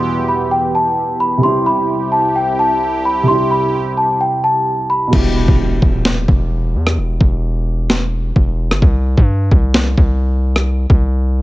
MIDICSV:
0, 0, Header, 1, 8, 480
1, 0, Start_track
1, 0, Key_signature, 1, "minor"
1, 0, Tempo, 461538
1, 1494, Time_signature, 4, 2, 24, 8
1, 11878, End_track
2, 0, Start_track
2, 0, Title_t, "Celesta"
2, 0, Program_c, 0, 8
2, 0, Note_on_c, 0, 84, 84
2, 261, Note_off_c, 0, 84, 0
2, 296, Note_on_c, 0, 83, 77
2, 517, Note_off_c, 0, 83, 0
2, 535, Note_on_c, 0, 79, 81
2, 756, Note_off_c, 0, 79, 0
2, 779, Note_on_c, 0, 81, 81
2, 1228, Note_off_c, 0, 81, 0
2, 1251, Note_on_c, 0, 83, 82
2, 1475, Note_off_c, 0, 83, 0
2, 1491, Note_on_c, 0, 84, 88
2, 1714, Note_off_c, 0, 84, 0
2, 1729, Note_on_c, 0, 83, 84
2, 2183, Note_off_c, 0, 83, 0
2, 2203, Note_on_c, 0, 81, 73
2, 2430, Note_off_c, 0, 81, 0
2, 2451, Note_on_c, 0, 79, 84
2, 2674, Note_off_c, 0, 79, 0
2, 2696, Note_on_c, 0, 81, 82
2, 3146, Note_off_c, 0, 81, 0
2, 3176, Note_on_c, 0, 83, 74
2, 3397, Note_off_c, 0, 83, 0
2, 3411, Note_on_c, 0, 84, 93
2, 3634, Note_off_c, 0, 84, 0
2, 3649, Note_on_c, 0, 83, 88
2, 4102, Note_off_c, 0, 83, 0
2, 4132, Note_on_c, 0, 81, 75
2, 4355, Note_off_c, 0, 81, 0
2, 4374, Note_on_c, 0, 79, 83
2, 4596, Note_off_c, 0, 79, 0
2, 4617, Note_on_c, 0, 81, 82
2, 5067, Note_off_c, 0, 81, 0
2, 5095, Note_on_c, 0, 83, 87
2, 5316, Note_off_c, 0, 83, 0
2, 11878, End_track
3, 0, Start_track
3, 0, Title_t, "Grand piano"
3, 0, Program_c, 1, 0
3, 0, Control_c, 1, 64, 127
3, 0, Note_on_c, 1, 47, 67
3, 0, Note_on_c, 1, 55, 57
3, 0, Note_on_c, 1, 64, 59
3, 0, Note_on_c, 1, 67, 72
3, 1426, Note_off_c, 1, 47, 0
3, 1432, Note_on_c, 1, 48, 68
3, 1446, Note_off_c, 1, 55, 0
3, 1465, Note_off_c, 1, 64, 0
3, 1470, Note_on_c, 1, 55, 59
3, 1484, Note_off_c, 1, 67, 0
3, 1508, Control_c, 1, 64, 0
3, 1508, Note_on_c, 1, 64, 60
3, 1546, Note_on_c, 1, 67, 73
3, 1692, Control_c, 1, 64, 127
3, 3344, Note_off_c, 1, 48, 0
3, 3361, Note_on_c, 1, 48, 60
3, 3364, Note_off_c, 1, 55, 0
3, 3383, Note_off_c, 1, 64, 0
3, 3399, Note_on_c, 1, 55, 59
3, 3402, Note_off_c, 1, 67, 0
3, 3436, Note_on_c, 1, 64, 61
3, 3474, Note_on_c, 1, 67, 69
3, 5268, Note_off_c, 1, 48, 0
3, 5277, Note_on_c, 1, 47, 68
3, 5288, Note_off_c, 1, 55, 0
3, 5307, Note_off_c, 1, 64, 0
3, 5314, Note_on_c, 1, 55, 55
3, 5326, Note_off_c, 1, 67, 0
3, 5347, Control_c, 1, 64, 0
3, 5352, Note_on_c, 1, 64, 59
3, 5390, Note_on_c, 1, 67, 73
3, 5503, Control_c, 1, 64, 127
3, 7186, Note_off_c, 1, 47, 0
3, 7206, Note_off_c, 1, 55, 0
3, 7225, Note_off_c, 1, 64, 0
3, 7244, Note_off_c, 1, 67, 0
3, 9187, Control_c, 1, 64, 0
3, 11878, End_track
4, 0, Start_track
4, 0, Title_t, "Analog synth pad"
4, 0, Program_c, 2, 89
4, 0, Note_on_c, 2, 40, 83
4, 0, Note_on_c, 2, 52, 75
4, 0, Note_on_c, 2, 59, 72
4, 0, Note_on_c, 2, 67, 89
4, 1456, Note_off_c, 2, 40, 0
4, 1456, Note_off_c, 2, 52, 0
4, 1456, Note_off_c, 2, 59, 0
4, 1456, Note_off_c, 2, 67, 0
4, 1494, Note_on_c, 2, 67, 92
4, 1495, Note_on_c, 2, 64, 74
4, 1496, Note_on_c, 2, 36, 85
4, 1496, Note_on_c, 2, 48, 75
4, 5296, Note_off_c, 2, 48, 0
4, 5296, Note_off_c, 2, 64, 0
4, 5296, Note_off_c, 2, 67, 0
4, 5297, Note_off_c, 2, 36, 0
4, 11878, End_track
5, 0, Start_track
5, 0, Title_t, "808-style bass"
5, 0, Program_c, 3, 38
5, 5334, Note_on_c, 3, 28, 109
5, 5687, Note_off_c, 3, 28, 0
5, 5701, Note_on_c, 3, 28, 100
5, 6040, Note_off_c, 3, 28, 0
5, 6055, Note_on_c, 3, 27, 103
5, 6515, Note_off_c, 3, 27, 0
5, 6534, Note_on_c, 3, 28, 104
5, 7014, Note_on_c, 3, 40, 100
5, 7029, Note_off_c, 3, 28, 0
5, 7254, Note_on_c, 3, 28, 99
5, 7270, Note_off_c, 3, 40, 0
5, 7482, Note_off_c, 3, 28, 0
5, 7495, Note_on_c, 3, 28, 104
5, 8653, Note_off_c, 3, 28, 0
5, 8694, Note_on_c, 3, 28, 104
5, 9062, Note_on_c, 3, 31, 101
5, 9077, Note_off_c, 3, 28, 0
5, 9169, Note_off_c, 3, 31, 0
5, 9175, Note_on_c, 3, 36, 115
5, 9527, Note_off_c, 3, 36, 0
5, 9542, Note_on_c, 3, 43, 99
5, 9880, Note_off_c, 3, 43, 0
5, 9895, Note_on_c, 3, 36, 105
5, 10355, Note_off_c, 3, 36, 0
5, 10375, Note_on_c, 3, 36, 108
5, 11296, Note_off_c, 3, 36, 0
5, 11334, Note_on_c, 3, 36, 106
5, 11878, Note_off_c, 3, 36, 0
5, 11878, End_track
6, 0, Start_track
6, 0, Title_t, "Downlifter"
6, 0, Program_c, 4, 103
6, 0, Note_on_c, 4, 60, 84
6, 1494, Note_off_c, 4, 60, 0
6, 11878, End_track
7, 0, Start_track
7, 0, Title_t, "Impact"
7, 0, Program_c, 5, 103
7, 5334, Note_on_c, 5, 60, 84
7, 7254, Note_off_c, 5, 60, 0
7, 11878, End_track
8, 0, Start_track
8, 0, Title_t, "Drums"
8, 5334, Note_on_c, 9, 36, 109
8, 5334, Note_on_c, 9, 49, 97
8, 5438, Note_off_c, 9, 36, 0
8, 5438, Note_off_c, 9, 49, 0
8, 5701, Note_on_c, 9, 36, 82
8, 5805, Note_off_c, 9, 36, 0
8, 6055, Note_on_c, 9, 36, 100
8, 6159, Note_off_c, 9, 36, 0
8, 6293, Note_on_c, 9, 38, 124
8, 6397, Note_off_c, 9, 38, 0
8, 6535, Note_on_c, 9, 36, 93
8, 6639, Note_off_c, 9, 36, 0
8, 7141, Note_on_c, 9, 37, 98
8, 7245, Note_off_c, 9, 37, 0
8, 7495, Note_on_c, 9, 36, 101
8, 7599, Note_off_c, 9, 36, 0
8, 8214, Note_on_c, 9, 38, 125
8, 8318, Note_off_c, 9, 38, 0
8, 8694, Note_on_c, 9, 36, 98
8, 8798, Note_off_c, 9, 36, 0
8, 9061, Note_on_c, 9, 37, 98
8, 9165, Note_off_c, 9, 37, 0
8, 9174, Note_on_c, 9, 36, 110
8, 9278, Note_off_c, 9, 36, 0
8, 9542, Note_on_c, 9, 36, 84
8, 9646, Note_off_c, 9, 36, 0
8, 9895, Note_on_c, 9, 36, 96
8, 9999, Note_off_c, 9, 36, 0
8, 10133, Note_on_c, 9, 38, 124
8, 10237, Note_off_c, 9, 38, 0
8, 10374, Note_on_c, 9, 36, 93
8, 10478, Note_off_c, 9, 36, 0
8, 10981, Note_on_c, 9, 37, 101
8, 11085, Note_off_c, 9, 37, 0
8, 11334, Note_on_c, 9, 36, 99
8, 11438, Note_off_c, 9, 36, 0
8, 11878, End_track
0, 0, End_of_file